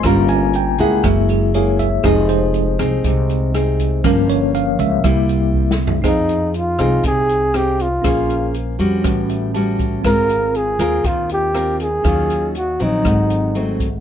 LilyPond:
<<
  \new Staff \with { instrumentName = "Tine electric piano" } { \time 4/4 \key f \minor \tempo 4 = 120 << { bes''8 aes''8 g''8 ges''8 fes''8 aes'8 des''8 fes''8 | ees''8 c''8 r2. | bes'8 des''8 f''8 e''4 r4. | r1 |
r2 r8 e''8 a''4 | r1 | r1 | } \\ { <bes des' f'>4. r8 <aes bes fes'>2 | <aes ees' g'>1 | <f bes des'>2 <g bes e'>8 r4. | <ees' aes' c'' f''>1 |
<des' bes' c'' aes''>2 <cis' b' fis''>2 | <c' f' bes' f''>1 | <ees' des'' f''>2 <c' aes' a' ges''>2 | } >> }
  \new Staff \with { instrumentName = "Flugelhorn" } { \time 4/4 \key f \minor r1 | r1 | r1 | ees'4 f'4 aes'4 g'8 f'8~ |
f'4 r2. | bes'4 aes'4 f'8 g'4 aes'8~ | aes'4 ges'8 ees'2 r8 | }
  \new Staff \with { instrumentName = "Nylon-string guitar" } { \time 4/4 \key f \minor << { <des' f' bes'>4 r8 <bes e' aes'>4. <bes fes' aes'>8 r8 | <c' ees' aes'>4. <c' ees' aes'>4. <c' ees' aes'>4 | <f bes des'>4. r8 <g bes e'>4. r8 | <c' ees' aes'>4 r8 <c' ees' aes'>4. <c' ees' aes'>8 r8 |
<des' aes' c''>4 r8 <g des' ges'>4. <g cis' fis'>4 | <c' f' bes'>4. <c' f' bes'>4. <c' f' bes'>8 r8 | <ges des' f'>4 r8 <ges c'>4. <ges a c'>8 r8 | } \\ { g2 ges2 | f2 c2 | g,2 c2 | f2 c2 |
bes2 a,2 | aes2 ees2 | ees2 aes,2 | } >> }
  \new Staff \with { instrumentName = "Upright bass" } { \clef bass \time 4/4 \key f \minor g,,4. des,8 ges,,2 | f,,4. c,8 c,2 | g,,4. des,8 c,2 | f,4. c,8 c,2 |
bes,,4. f,8 a,,2 | aes,,4. ees,8 ees,2 | ees,4. bes,,8 aes,,2 | }
  \new DrumStaff \with { instrumentName = "Drums" } \drummode { \time 4/4 <hh bd ss>8 hh8 hh8 <hh bd>8 <hh bd ss>8 hh8 hh8 <hh bd>8 | <hh bd ss>8 hh8 hh8 <hh bd ss>8 <hh bd>8 hh8 <hh ss>8 <hh bd>8 | <hh bd ss>8 hh8 hh8 <hh bd>8 <hh bd ss>8 hh8 \tuplet 3/2 { bd8 sn8 tomfh8 } | <hh bd ss>8 hh8 hh8 <hh ss>8 <hh bd>8 hh8 <hh ss>8 hh8 |
<hh bd ss>8 hh8 hh8 hh8 <hh bd ss>8 hh8 hh8 <hh bd>8 | <hh bd ss>8 hh8 hh8 <hh ss>8 <hh bd>8 hh8 <hh ss>8 hh8 | <hh bd ss>8 hh8 hh8 hh8 <hh bd ss>8 hh8 hh8 <hh bd>8 | }
>>